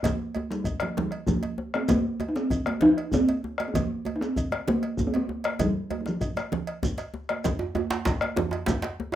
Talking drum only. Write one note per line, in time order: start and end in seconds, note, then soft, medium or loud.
0.04 0.52 A#3 medium
0.51 0.84 G3 medium
0.82 0.99 F3 medium
0.97 1.29 G3 medium
1.28 1.77 F3 medium
1.75 1.91 C4 loud
1.90 2.30 A#3 medium
2.29 2.38 D#4 medium
2.36 2.67 C4 loud
2.66 2.84 A#3 medium
2.82 3.15 D#4 loud
3.14 3.67 C4 loud
3.68 3.77 C4 medium
3.75 4.17 A#3 medium
4.16 4.23 D#4 medium
4.21 4.70 C4 medium
4.68 5.06 A#3 medium
5.07 5.17 C4 medium
5.16 5.63 A#3 medium
5.61 5.91 G3 medium
6.01 6.10 G3 medium
6.08 6.53 F3 medium